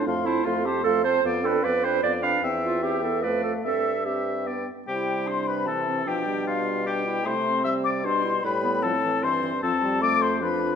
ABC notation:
X:1
M:3/4
L:1/8
Q:1/4=151
K:C
V:1 name="Flute"
c' a c' a c' a | f g f g f g | g2 g2 f2 | e2 e2 g z |
g2 c' b a2 | g2 f2 g2 | c'2 e' d' c'2 | b2 a2 c'2 |
a2 d' c' b2 |]
V:2 name="Oboe"
f c f c f c | d B d B d B | e2 e2 d2 | e2 e2 d z |
G2 c B A2 | G2 F2 G2 | c2 e d c2 | B2 A2 c2 |
A2 d c B2 |]
V:3 name="Clarinet"
z E F G A c | z A B c d f | z F G A B A | A2 G3 z |
E2 D2 C C | D4 D E | E C3 D E | E B, C4 |
C4 D2 |]
V:4 name="French horn"
A, C A, C A, C | B, D B, D B, D | C2 C B, A,2 | C2 C2 B, z |
G,4 E,2 | F, G,4- G, | A,2 G,4 | G,2 F, E, E, E, |
F, G, A,2 F,2 |]
V:5 name="Bassoon" clef=bass
F,,2 F,,2 F,,2 | F,,2 F,,2 F,,2 | E,,4 F,,2 | G,,4- G,, z |
C,6 | B,,6 | C,4 B,,2 | A,,4 G,,2 |
F,,6 |]